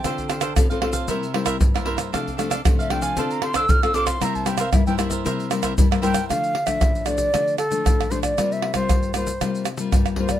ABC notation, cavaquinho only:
X:1
M:4/4
L:1/16
Q:1/4=115
K:Cmix
V:1 name="Cavaquinho"
[DAcf]2 [DAcf] [DAcf] z [Acf] [DAcf] [Acf] [EBce]2 [EBce] [EBce] z [Bce] [EBce] [Bce] | [DAdf]2 [DAdf] [DAdf] z [Adf] [DAdf] [Adf] [DAcf]2 [DAcf] [DAcf] z [Acf] [DAcf] [Acf] | [EBce]2 [EBce] [EBce] z [Bce] [EBce] [Bce] [EBce]2 [EBce] [EBce] z [Bce] [EBce] [Bce] | [K:Dm] z16 |
z16 |]